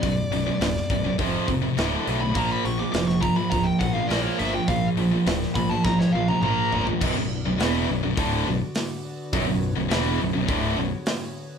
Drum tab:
CC |----------------|----------------|----------------|x---------------|
HH |o-o-o-o-o-o-o-o-|o-o-o-o-o-o-o-o-|o-o-o-o---------|----o---o---o---|
SD |----oo------o---|----oo------o---|----oo--oo------|----o-------o---|
T1 |----------------|----------------|-----------o----|----------------|
T2 |----------------|----------------|------------o---|----------------|
FT |----------------|----------------|--------------oo|----------------|
BD |o-----o-o-o-----|o-----o-o-o-----|o-----o-o-------|o-------o-------|

CC |----------------|
HH |o---o---o---o---|
SD |----o-------o---|
T1 |----------------|
T2 |----------------|
FT |----------------|
BD |o-------o-------|